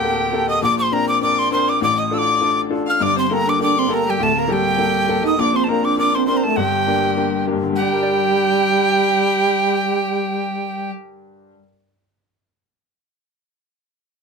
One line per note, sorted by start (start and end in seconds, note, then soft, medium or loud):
0.00 0.59 D1 medium
0.00 0.59 D2 medium
0.00 0.44 G4 medium
0.00 0.49 G5 loud
0.04 0.31 A#3 medium
0.04 0.31 G4 soft
0.04 0.32 A4 soft
0.32 0.61 A#3 soft
0.32 0.61 G4 medium
0.32 0.62 A4 medium
0.47 0.60 D#5 medium
0.47 0.62 D#6 loud
0.62 1.77 A#1 medium
0.62 1.78 A#2 medium
0.62 0.77 D5 medium
0.62 0.77 D6 loud
0.79 0.91 C5 medium
0.79 0.95 C6 medium
0.92 1.20 C4 medium
0.92 1.21 D4 medium
0.92 1.07 A#4 medium
0.92 1.21 A#4 medium
0.92 1.08 A#5 loud
1.09 1.22 D5 medium
1.09 1.21 D6 medium
1.22 1.50 C4 medium
1.22 1.50 D4 soft
1.22 1.51 A#4 medium
1.22 1.50 D5 medium
1.22 1.40 D6 loud
1.39 1.52 C6 loud
1.52 1.80 C4 medium
1.52 1.80 D4 soft
1.52 1.81 A#4 medium
1.52 1.69 C5 medium
1.52 1.71 C6 medium
1.68 1.81 D5 medium
1.68 1.82 D6 medium
1.81 2.96 A1 medium
1.81 2.96 A2 medium
1.81 1.96 D5 medium
1.81 2.00 D6 loud
1.97 2.03 D#5 medium
1.97 2.15 D#6 medium
2.11 2.39 D4 soft
2.11 2.39 F4 soft
2.11 2.39 A4 medium
2.11 2.57 D5 medium
2.11 2.19 E6 loud
2.18 2.61 D6 loud
2.41 2.68 D4 medium
2.41 2.69 F4 soft
2.41 2.69 A4 medium
2.70 2.99 D4 medium
2.70 2.99 F4 soft
2.70 2.99 A4 medium
2.87 3.03 F5 medium
2.87 3.04 F6 loud
2.99 4.15 G1 medium
2.99 4.16 G2 medium
2.99 3.14 D4 medium
2.99 3.18 D5 medium
2.99 3.17 D6 loud
3.15 3.29 C4 medium
3.15 3.31 C5 medium
3.15 3.27 C6 medium
3.27 3.44 A#3 medium
3.27 3.57 A#3 medium
3.27 3.58 G4 soft
3.27 3.49 A#4 medium
3.27 3.35 C6 medium
3.31 3.58 A4 medium
3.31 3.51 A#5 loud
3.44 3.58 D4 medium
3.44 3.59 D5 medium
3.49 3.61 D6 medium
3.59 3.86 A#3 soft
3.59 3.75 D4 medium
3.59 3.87 G4 soft
3.59 3.87 A4 medium
3.59 3.92 D5 medium
3.63 3.80 D6 loud
3.77 3.89 C4 medium
3.77 3.95 C6 medium
3.87 4.17 A#3 medium
3.87 4.05 A#3 medium
3.87 4.18 G4 soft
3.87 4.18 A4 medium
3.87 4.06 A#4 medium
3.94 4.12 A#5 medium
4.06 4.19 G3 medium
4.06 4.20 G4 medium
4.06 4.25 G5 medium
4.19 5.34 D1 medium
4.19 5.35 D2 medium
4.19 4.34 A3 medium
4.19 4.38 A4 medium
4.23 4.40 A5 loud
4.35 4.48 A#3 medium
4.35 4.51 A#4 medium
4.39 4.54 A#5 medium
4.47 5.20 G3 medium
4.47 4.76 A#3 medium
4.47 4.77 G4 medium
4.47 5.24 G4 medium
4.47 4.78 A4 medium
4.53 5.26 G5 loud
4.78 5.07 A#3 medium
4.78 5.07 G4 soft
4.78 5.08 A4 medium
5.08 5.37 A#3 medium
5.08 5.37 G4 soft
5.08 5.38 A4 medium
5.22 5.36 D#4 loud
5.22 5.37 D#5 medium
5.27 5.41 D#6 loud
5.37 6.53 A#1 medium
5.37 6.54 A#2 medium
5.37 5.55 D4 medium
5.37 5.53 D5 medium
5.37 5.58 D6 loud
5.53 5.67 C4 medium
5.53 5.68 C5 medium
5.53 5.65 C6 medium
5.64 5.85 A#4 medium
5.64 5.70 A5 medium
5.68 5.83 A#3 medium
5.68 5.96 C4 medium
5.68 5.96 D4 medium
5.68 5.96 A#4 medium
5.68 5.86 A#5 medium
5.83 5.97 D4 medium
5.83 5.97 D5 medium
5.83 5.98 D6 medium
5.97 6.25 C4 soft
5.97 6.26 D4 soft
5.97 6.13 D4 medium
5.97 6.26 A#4 medium
5.97 6.16 D5 medium
5.97 6.16 D6 loud
6.15 6.27 C4 medium
6.15 6.27 C5 medium
6.15 6.26 C6 medium
6.27 6.56 C4 soft
6.27 6.44 C4 medium
6.27 6.56 D4 medium
6.27 6.57 A#4 medium
6.27 6.45 C5 medium
6.27 6.38 C6 medium
6.37 6.45 A#5 medium
6.43 6.60 A3 medium
6.43 6.56 A4 medium
6.43 6.58 A5 medium
6.56 7.72 G1 medium
6.56 7.51 G2 medium
6.56 7.47 G3 medium
6.56 7.42 G4 medium
6.56 7.46 G5 loud
6.87 7.15 A#3 medium
6.87 7.15 D4 soft
6.87 7.16 G4 medium
7.17 7.45 A#3 soft
7.17 7.46 D4 soft
7.17 7.46 G4 medium
7.47 7.76 A#3 medium
7.47 7.76 D4 soft
7.47 7.76 G4 medium
7.52 11.49 G2 medium
7.63 11.54 D3 soft
7.72 11.59 G3 medium
7.72 10.91 G3 loud
7.72 10.91 G4 loud
7.72 10.91 G5 loud
7.82 11.64 D4 medium
7.92 11.69 A#4 soft
8.03 11.74 D5 medium